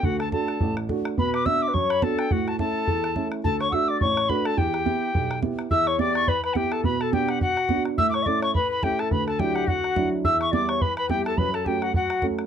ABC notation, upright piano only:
X:1
M:4/4
L:1/8
Q:"Swing" 1/4=212
K:Edor
V:1 name="Upright piano"
D,,2 [A,DF]2 A,,,2 [A,DF]2 | B,,2 [B,DF]2 F,,2 [B,DF]2 | A,,2 [A,CE]2 E,,2 [A,CE]2 | D,,2 [A,DF]2 A,,,2 [A,DF]2 |
E,,2 [B,EG]2 B,,,2 [B,EG]2 | E,,2 [B,EG]2 z2 [B,EG]2 | B,,2 [B,DF]2 z2 [B,DF]2 | A,,2 [A,CE]2 z2 [A,CE]2 |
D,,2 [F,DE]2 z2 [F,DE]2 | E,,2 [G,B,E]2 z2 [G,B,E]2 | F,,2 [A,CF]2 z2 [A,CF]2 |]